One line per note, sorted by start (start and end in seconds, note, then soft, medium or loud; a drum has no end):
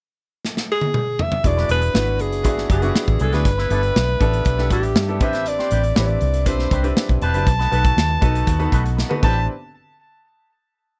0.45 snare soft
0.57 snare medium
0.72 1.23 G#4 loud
0.81 high tom medium
0.94 mid tom medium
1.19 1.48 E5 medium
1.19 floor tom medium
1.32 floor tom medium
1.43 1.64 E1 loud
1.43 1.80 B3 medium
1.43 1.80 D4 medium
1.43 1.81 E4 medium
1.43 1.81 F#4 medium
1.43 1.81 G#4 medium
1.43 1.71 D5 loud
1.43 muted clean electric guitar stroke soft
1.43 kick medium
1.43 closed hi-hat medium
1.57 1.68 F#3 medium
1.57 1.69 B3 medium
1.57 1.69 D4 medium
1.57 1.70 B4 medium
1.57 snare soft
1.69 1.89 E1 medium
1.69 1.81 F#3 medium
1.69 1.81 B3 medium
1.69 1.81 D4 medium
1.69 1.81 G#4 medium
1.69 2.23 B4 loud
1.69 closed hi-hat medium
1.82 muted clean electric guitar stroke soft
1.82 closed hi-hat medium
1.93 2.20 G#1 medium
1.93 2.30 B3 medium
1.93 2.30 D4 medium
1.93 2.31 E4 medium
1.93 2.31 F#4 medium
1.93 2.31 B4 medium
1.93 muted clean electric guitar stroke soft
1.93 snare medium
2.06 muted clean electric guitar stroke soft
2.06 closed hi-hat soft
2.19 2.45 F#1 medium
2.19 2.71 G#4 medium
2.19 closed hi-hat medium
2.32 muted clean electric guitar stroke soft
2.32 closed hi-hat medium
2.43 2.64 G#1 medium
2.43 2.71 B3 medium
2.43 2.71 D4 medium
2.43 2.72 E4 medium
2.43 2.72 F#4 medium
2.43 2.72 G#4 medium
2.43 muted clean electric guitar stroke soft
2.43 kick medium
2.43 closed hi-hat medium
2.57 muted clean electric guitar stroke soft
2.57 snare soft
2.69 2.89 F#1 medium
2.69 2.84 F#3 medium
2.69 2.82 B3 medium
2.69 2.82 D4 medium
2.69 2.81 G#4 medium
2.69 3.24 G#4 medium
2.69 kick medium
2.69 closed hi-hat medium
2.82 3.18 B3 medium
2.82 3.19 D4 medium
2.82 3.19 E4 medium
2.82 3.19 F#4 medium
2.82 2.89 G4 medium
2.82 muted clean electric guitar stroke soft
2.82 closed hi-hat medium
2.89 3.22 G#4 medium
2.95 muted clean electric guitar stroke soft
2.95 snare loud
3.08 3.18 A1 medium
3.08 muted clean electric guitar stroke soft
3.08 kick medium
3.08 closed hi-hat soft
3.20 3.30 C2 medium
3.20 3.33 F#3 medium
3.20 3.32 B3 medium
3.20 3.32 D4 medium
3.20 3.31 G#4 medium
3.20 3.36 A4 medium
3.20 closed hi-hat medium
3.32 3.43 D2 medium
3.32 3.45 F#3 soft
3.32 3.45 B3 medium
3.32 3.45 D4 medium
3.32 3.44 D4 medium
3.32 3.45 E4 medium
3.32 3.45 F#4 medium
3.32 3.44 G#4 medium
3.32 3.46 G#4 medium
3.32 4.72 B4 medium
3.32 snare soft
3.32 closed hi-hat medium
3.45 3.65 G1 medium
3.45 muted clean electric guitar stroke soft
3.45 kick medium
3.45 closed hi-hat medium
3.58 3.69 G3 medium
3.58 3.70 B3 medium
3.58 3.70 E4 medium
3.58 3.71 B4 medium
3.58 snare soft
3.70 3.90 G1 medium
3.70 3.82 G3 medium
3.70 4.07 B3 medium
3.70 3.82 B3 medium
3.70 4.07 D4 medium
3.70 4.07 E4 medium
3.70 3.82 E4 medium
3.70 4.07 G4 medium
3.70 4.07 A4 medium
3.70 3.82 A4 medium
3.70 closed hi-hat medium
3.83 muted clean electric guitar stroke soft
3.83 closed hi-hat soft
3.95 4.15 B1 medium
3.95 muted clean electric guitar stroke soft
3.95 snare loud
4.08 muted clean electric guitar stroke soft
4.08 closed hi-hat soft
4.20 4.40 A1 medium
4.20 4.47 B3 medium
4.20 4.48 D4 medium
4.20 4.48 E4 medium
4.20 4.48 G4 medium
4.20 4.48 A4 loud
4.20 kick medium
4.20 closed hi-hat medium
4.33 muted clean electric guitar stroke soft
4.33 closed hi-hat medium
4.45 4.71 B1 medium
4.45 muted clean electric guitar stroke soft
4.45 kick medium
4.45 closed hi-hat medium
4.57 4.94 B3 medium
4.57 4.94 D4 medium
4.57 4.94 E4 medium
4.57 4.95 G4 medium
4.57 4.95 A4 medium
4.57 muted clean electric guitar stroke soft
4.57 snare soft
4.70 4.96 A1 medium
4.70 4.85 G3 medium
4.70 4.84 B3 medium
4.70 4.83 E4 medium
4.70 5.25 G4 medium
4.70 4.82 A4 medium
4.70 kick medium
4.70 closed hi-hat medium
4.83 muted clean electric guitar stroke soft
4.83 closed hi-hat medium
4.96 5.21 G2 medium
4.96 muted clean electric guitar stroke soft
4.96 snare loud
5.08 5.21 B3 medium
5.08 5.20 D4 medium
5.08 5.20 E4 medium
5.08 5.20 G4 medium
5.08 5.21 A4 medium
5.08 muted clean electric guitar stroke soft
5.08 closed hi-hat soft
5.20 5.60 A1 medium
5.20 5.81 C4 medium
5.20 5.34 C4 medium
5.20 5.81 D4 medium
5.20 5.34 D4 medium
5.20 5.81 E4 medium
5.20 5.82 G4 medium
5.20 5.33 G4 medium
5.20 5.82 B4 medium
5.20 5.33 B4 medium
5.20 5.50 E5 medium
5.20 kick loud
5.20 closed hi-hat medium
5.33 5.45 C4 medium
5.33 5.45 D4 medium
5.33 5.45 G4 medium
5.33 5.45 B4 medium
5.33 snare soft
5.33 closed hi-hat medium
5.46 5.97 D5 loud
5.46 muted clean electric guitar stroke soft
5.46 closed hi-hat medium
5.59 5.70 C4 medium
5.59 5.70 D4 medium
5.59 5.71 G4 medium
5.59 5.72 C5 medium
5.59 snare soft
5.71 5.91 A1 medium
5.71 5.83 C4 medium
5.71 5.83 D4 medium
5.71 5.83 G4 medium
5.71 5.83 B4 medium
5.71 closed hi-hat medium
5.84 muted clean electric guitar stroke medium
5.84 closed hi-hat medium
5.95 6.16 A1 medium
5.95 6.32 C4 medium
5.95 6.32 D4 medium
5.95 6.32 E4 medium
5.95 6.33 G4 medium
5.95 6.33 B4 medium
5.95 6.49 D5 medium
5.95 muted clean electric guitar stroke soft
5.95 snare loud
6.08 muted clean electric guitar stroke soft
6.08 closed hi-hat soft
6.21 6.46 C2 loud
6.21 closed hi-hat medium
6.34 muted clean electric guitar stroke soft
6.34 closed hi-hat medium
6.45 6.66 B1 medium
6.45 6.73 C4 medium
6.45 6.73 D4 medium
6.45 6.73 E4 medium
6.45 6.73 G4 medium
6.45 6.74 B4 medium
6.45 6.85 C5 medium
6.45 muted clean electric guitar stroke soft
6.45 kick medium
6.45 closed hi-hat medium
6.59 muted clean electric guitar stroke soft
6.59 snare soft
6.71 6.91 C2 medium
6.71 6.86 C4 medium
6.71 6.84 D4 medium
6.71 6.84 G4 medium
6.71 6.83 B4 medium
6.71 kick medium
6.71 closed hi-hat medium
6.83 7.20 C4 medium
6.83 7.20 D4 medium
6.83 7.20 E4 medium
6.83 7.20 G4 medium
6.83 7.20 B4 medium
6.83 muted clean electric guitar stroke soft
6.83 closed hi-hat medium
6.97 muted clean electric guitar stroke soft
6.97 snare loud
7.09 7.19 B1 medium
7.09 muted clean electric guitar stroke soft
7.09 kick medium
7.09 closed hi-hat soft
7.22 7.34 E1 medium
7.22 7.35 C4 medium
7.22 7.35 D4 medium
7.22 7.34 G4 medium
7.22 7.33 B4 medium
7.22 8.94 A5 loud
7.22 closed hi-hat medium
7.33 7.44 F#1 medium
7.33 7.46 C4 medium
7.33 7.47 C4 soft
7.33 7.47 D4 medium
7.33 7.47 E4 medium
7.33 7.47 G4 medium
7.33 7.46 G4 medium
7.33 7.47 B4 medium
7.33 7.46 B4 medium
7.33 closed hi-hat medium
7.47 7.66 B1 medium
7.47 muted clean electric guitar stroke soft
7.47 kick medium
7.47 closed hi-hat medium
7.59 7.71 A3 medium
7.59 7.72 D#4 medium
7.59 7.72 F#4 medium
7.59 7.72 B4 medium
7.59 snare soft
7.59 closed hi-hat soft
7.71 7.91 B1 medium
7.71 7.84 A3 medium
7.71 8.08 B3 medium
7.71 8.08 D#4 medium
7.71 7.84 D#4 medium
7.71 8.08 F#4 medium
7.71 7.84 F#4 medium
7.71 8.08 A4 medium
7.71 8.08 B4 medium
7.71 7.83 B4 medium
7.71 closed hi-hat medium
7.85 muted clean electric guitar stroke soft
7.85 kick loud
7.85 closed hi-hat medium
7.97 8.16 D#2 medium
7.97 muted clean electric guitar stroke soft
7.97 snare medium
8.09 muted clean electric guitar stroke soft
8.21 8.42 B1 medium
8.21 8.49 B3 medium
8.21 8.49 D#4 medium
8.21 8.49 F#4 medium
8.21 8.49 A4 medium
8.21 8.50 B4 medium
8.21 8.45 D#5 medium
8.21 kick loud
8.21 closed hi-hat medium
8.34 muted clean electric guitar stroke soft
8.34 closed hi-hat medium
8.47 8.67 D#2 medium
8.47 8.70 F#5 medium
8.47 muted clean electric guitar stroke soft
8.47 kick medium
8.47 closed hi-hat medium
8.59 8.96 B3 medium
8.59 8.96 D#4 medium
8.59 8.96 F#4 medium
8.59 8.96 A4 medium
8.59 8.96 B4 medium
8.59 muted clean electric guitar stroke medium
8.59 closed hi-hat soft
8.72 9.02 B1 medium
8.72 8.87 A3 medium
8.72 8.85 D#4 medium
8.72 8.84 F#4 medium
8.72 8.83 B4 medium
8.72 8.96 A5 medium
8.72 kick medium
8.72 closed hi-hat medium
8.85 muted clean electric guitar stroke soft
8.85 closed hi-hat soft
8.97 9.21 B5 medium
8.97 muted clean electric guitar stroke soft
8.97 snare medium
9.09 9.22 B3 medium
9.09 9.23 D#4 medium
9.09 9.23 F#4 medium
9.09 9.23 A4 medium
9.09 9.21 B4 loud
9.09 muted clean electric guitar stroke soft
9.09 high tom medium
9.22 9.46 A1 medium
9.22 9.38 C4 medium
9.22 9.46 C4 medium
9.22 9.46 D4 medium
9.22 9.38 D4 medium
9.22 9.46 E4 medium
9.22 9.46 G4 medium
9.22 9.38 G4 medium
9.22 9.46 B4 medium
9.22 9.39 B4 medium
9.22 9.47 A5 medium
9.22 kick medium
9.22 crash medium